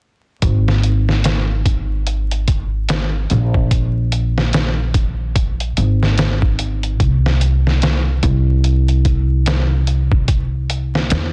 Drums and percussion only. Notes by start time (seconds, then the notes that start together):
0.42 kick, closed hi-hat
0.68 snare
0.83 closed hi-hat
1.09 snare
1.24 snare, closed hi-hat
1.66 kick, closed hi-hat
2.07 closed hi-hat
2.31 closed hi-hat
2.48 kick, closed hi-hat
2.89 snare, closed hi-hat
3.30 closed hi-hat
3.54 kick
3.71 kick, closed hi-hat
4.12 closed hi-hat
4.38 snare
4.53 snare, closed hi-hat
4.94 kick, closed hi-hat
5.36 kick, closed hi-hat
5.60 closed hi-hat
5.77 closed hi-hat
6.03 snare
6.18 snare, closed hi-hat
6.42 kick
6.59 closed hi-hat
6.83 closed hi-hat
7.00 kick, closed hi-hat
7.26 snare
7.41 closed hi-hat
7.67 snare
7.82 snare, closed hi-hat
8.23 kick, closed hi-hat
8.64 closed hi-hat
8.88 closed hi-hat
9.05 kick, closed hi-hat
9.46 snare, closed hi-hat
9.87 closed hi-hat
10.12 kick
10.28 kick, closed hi-hat
10.70 closed hi-hat
10.95 snare
11.10 snare, closed hi-hat